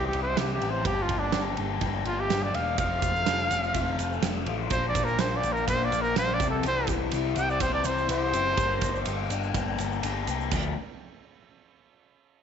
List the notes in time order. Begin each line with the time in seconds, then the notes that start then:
Already playing: C2 E3 C4 E4 G4
0.07 G4
0.13 C2, ride
0.22 C5
0.36 C2 E3 C4 E4 G4, snare, ride
0.54 G4
0.60 A1 E3 C4 E4 G4, ride
0.70 C5
0.85 G1 A#3 D4 G4, kick, ride
1.02 F4
1.09 G1, kick, ride
1.19 D4
1.32 G1 A#3 D4 G4, snare, ride
1.57 G1 A#3 D4 G4, ride
1.81 G1 A#3 D4 G4, kick, ride
2.05 G1 F4, ride
2.20 G4
2.30 G1 A#3 D4 G4, snare, ride
2.43 D5
2.54 E1 A#3 D4 G4 F5, ride
2.78 F1 F3 A3 C4 F4 F5, kick, ride, shaker
3.02 F1, kick, ride, shaker
3.16 shaker
3.26 F1 F3 A3 C4 F4, snare, ride, shaker
3.50 F1 F3 A3 C4 F4, ride, shaker
3.64 shaker
3.74 F1 F3 A3 C4 F4, kick, ride, shaker
3.98 F1, ride, shaker
4.13 shaker
4.21 F1 F3 A3 C4 F4, snare, ride, shaker
4.46 A1 F3 A3 C4 F4, ride
4.70 A#1 F3 A#3 D4 F4 C5, kick, ride, shaker
4.88 D5
4.95 A#1, kick, ride, shaker
5.05 A#4, shaker
5.19 A#1 F3 A#3 D4 F4 C5, snare, ride, shaker
5.37 D5
5.43 A#1 F3 A#3 D4 F4, ride, shaker
5.53 A#4
5.57 shaker
5.67 A#1 F3 A#3 D4 F4 C5, kick, ride, shaker
5.85 D5
5.91 A#1, ride, shaker
6.02 A#4, shaker
6.16 A#1 F3 A#3 D4 F4 C5, snare, ride, shaker
6.34 D5
6.39 C2 E3 C4 E4 G4, kick, ride, shaker
6.50 A4
6.63 C2 E3 C4 E4 G4, ride, shaker
6.67 C5
6.87 C2, kick, ride, shaker
7.12 C2 E3 C4 E4 G4, ride, shaker
7.36 C2 E3 C4 E4 G4 G5, ride, shaker
7.50 D5, shaker
7.60 C2 E3 C4 E4 G4 C5, kick, ride, shaker
7.74 D5
7.84 C2 C5, ride, shaker
7.98 shaker
8.08 C2 E3 C4 E4 C5, ride, shaker
8.12 G4
8.33 F#1 E3 C4 E4 G4, ride, shaker
8.57 G1 A#3 D4 G4, kick, ride, shaker
8.81 G1, kick, ride, shaker
8.96 shaker
9.05 G1 A#3 D4 G4, ride, shaker
9.30 G1 A#3 D4 G4, ride, shaker
9.43 shaker
9.54 G1 A#3 D4 G4, kick, ride, shaker
9.78 G1, ride, shaker
9.92 shaker
10.03 G1 A#3 D4 G4, ride, shaker
10.27 C2 A#3 D4 G4, ride, shaker
10.41 shaker
10.51 D2 F3 A3 D4, kick, crash, shaker